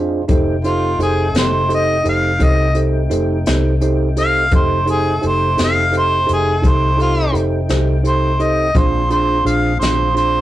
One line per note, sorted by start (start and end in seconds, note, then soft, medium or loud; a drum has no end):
0.00 0.25 F2 medium
0.00 0.25 G#3 medium
0.00 0.25 C4 medium
0.00 0.21 D4 medium
0.00 0.25 D4 medium
0.00 0.21 F4 medium
0.00 0.25 F4 medium
0.00 0.21 G#4 medium
0.00 0.21 C5 medium
0.28 0.96 F1 medium
0.28 4.48 A3 medium
0.28 4.48 C4 medium
0.28 0.55 D#4 medium
0.28 4.48 D#4 medium
0.28 0.55 G4 medium
0.28 0.55 A4 medium
0.28 0.56 C5 medium
0.28 4.48 G5 medium
0.28 kick medium
0.28 closed hi-hat medium
0.64 0.91 D#4 soft
0.64 0.99 F4 medium
0.64 0.92 G4 soft
0.64 0.91 A4 soft
0.64 0.91 C5 medium
0.64 closed hi-hat soft
0.99 1.31 F1 medium
0.99 1.26 D#4 soft
0.99 1.26 G4 soft
0.99 1.40 G#4 medium
0.99 1.26 A4 soft
0.99 1.26 C5 medium
0.99 closed hi-hat medium
1.34 2.01 F1 medium
1.34 1.61 D#4 soft
1.34 1.61 G4 soft
1.34 1.62 A4 soft
1.34 1.62 C5 medium
1.34 snare loud
1.34 closed hi-hat medium
1.38 1.71 C5 medium
1.69 1.96 D#4 soft
1.69 1.96 G4 soft
1.69 1.96 A4 soft
1.69 1.96 C5 medium
1.69 closed hi-hat medium
1.74 2.06 D#5 medium
2.04 2.38 F1 medium
2.04 2.31 D#4 soft
2.04 2.32 G4 soft
2.04 2.31 A4 soft
2.04 2.32 C5 medium
2.04 closed hi-hat medium
2.09 2.45 F5 medium
2.39 3.07 C2 medium
2.39 2.66 D#4 soft
2.39 2.67 G4 soft
2.39 2.67 A4 soft
2.39 2.67 C5 soft
2.39 kick medium
2.39 closed hi-hat medium
2.44 2.76 D#5 loud
2.75 3.02 D#4 soft
2.75 3.02 G4 soft
2.75 3.02 A4 soft
2.75 3.02 C5 medium
2.75 closed hi-hat medium
3.10 3.43 F1 medium
3.10 3.37 D#4 medium
3.10 3.37 G4 medium
3.10 3.37 A4 medium
3.10 3.37 C5 medium
3.10 closed hi-hat medium
3.46 4.48 C2 medium
3.46 3.73 D#4 medium
3.46 3.73 G4 medium
3.46 3.73 A4 medium
3.46 3.74 C5 medium
3.46 snare medium
3.46 closed hi-hat medium
3.81 4.08 D#4 medium
3.81 4.08 G4 medium
3.81 4.08 A4 soft
3.81 4.08 C5 medium
3.81 closed hi-hat medium
4.17 4.43 D#4 soft
4.17 4.43 G4 soft
4.17 4.43 A4 soft
4.17 4.44 C5 medium
4.17 4.53 F5 loud
4.17 closed hi-hat medium
4.51 5.19 F1 medium
4.51 8.72 A3 medium
4.51 8.72 C4 medium
4.51 8.71 D#4 medium
4.51 4.78 D#4 medium
4.51 4.78 G4 soft
4.51 4.78 A4 soft
4.51 4.79 C5 medium
4.51 4.88 C5 medium
4.51 8.71 G5 medium
4.51 kick loud
4.51 closed hi-hat medium
4.86 5.13 D#4 medium
4.86 5.13 G4 soft
4.86 5.13 A4 soft
4.86 5.13 C5 medium
4.86 closed hi-hat medium
4.91 5.23 G#4 medium
5.22 5.56 F1 medium
5.22 5.49 D#4 soft
5.22 5.49 G4 soft
5.22 5.49 A4 soft
5.22 5.49 C5 medium
5.22 closed hi-hat medium
5.27 5.59 C5 medium
5.57 6.25 F1 medium
5.57 5.84 D#4 soft
5.57 5.84 G4 soft
5.57 5.84 A4 soft
5.57 5.84 C5 medium
5.57 snare loud
5.57 closed hi-hat medium
5.64 5.95 F5 medium
5.92 6.19 D#4 soft
5.92 6.19 G4 soft
5.92 6.19 A4 soft
5.92 6.19 C5 medium
5.92 closed hi-hat soft
5.98 6.30 C5 medium
6.26 6.61 F1 medium
6.26 6.54 D#4 soft
6.26 6.54 G4 soft
6.26 6.54 A4 soft
6.26 6.54 C5 medium
6.26 closed hi-hat medium
6.33 6.70 G#4 medium
6.62 7.30 C2 medium
6.62 6.89 D#4 soft
6.62 6.90 G4 soft
6.62 6.90 A4 soft
6.62 6.90 C5 soft
6.62 kick medium
6.62 closed hi-hat medium
6.68 7.00 C5 medium
6.97 7.24 D#4 soft
6.97 7.25 G4 soft
6.97 7.25 A4 soft
6.97 7.25 C5 medium
6.97 closed hi-hat soft
7.02 7.34 F4 medium
7.32 7.66 F1 medium
7.32 7.60 D#4 soft
7.32 7.60 G4 soft
7.32 7.60 A4 soft
7.32 7.60 C5 medium
7.32 closed hi-hat medium
7.69 8.71 C2 medium
7.69 7.96 D#4 medium
7.69 7.96 G4 medium
7.69 7.96 A4 soft
7.69 7.96 C5 medium
7.69 snare medium
7.69 closed hi-hat medium
8.03 8.30 D#4 soft
8.03 8.31 G4 soft
8.03 8.31 A4 soft
8.03 8.31 C5 medium
8.03 closed hi-hat medium
8.07 8.45 C5 medium
8.40 8.66 D#4 soft
8.40 8.66 G4 soft
8.40 8.66 A4 soft
8.40 8.66 C5 medium
8.40 8.80 D#5 medium
8.40 closed hi-hat medium
8.75 9.42 A#1 medium
8.75 10.41 C4 medium
8.75 9.02 D4 medium
8.75 10.41 D4 medium
8.75 9.02 F4 medium
8.75 10.41 F4 medium
8.75 10.41 G#4 medium
8.75 9.02 G#4 soft
8.75 9.02 C5 medium
8.75 9.11 C5 medium
8.75 kick loud
8.75 closed hi-hat medium
9.10 9.37 D4 soft
9.10 9.37 F4 soft
9.10 9.37 G#4 soft
9.10 9.37 C5 medium
9.10 9.45 C5 medium
9.10 closed hi-hat medium
9.45 9.78 A#1 medium
9.45 9.72 D4 soft
9.45 9.72 F4 soft
9.45 9.72 G#4 soft
9.45 9.72 C5 medium
9.45 9.79 F5 medium
9.45 closed hi-hat medium
9.79 10.41 A#1 medium
9.79 10.08 D4 soft
9.79 10.08 F4 soft
9.79 10.08 G#4 soft
9.79 10.14 C5 medium
9.79 10.08 C5 soft
9.79 snare loud
9.79 closed hi-hat medium
10.15 10.41 D4 soft
10.15 10.41 F4 soft
10.15 10.41 G#4 soft
10.15 10.41 C5 medium
10.15 closed hi-hat medium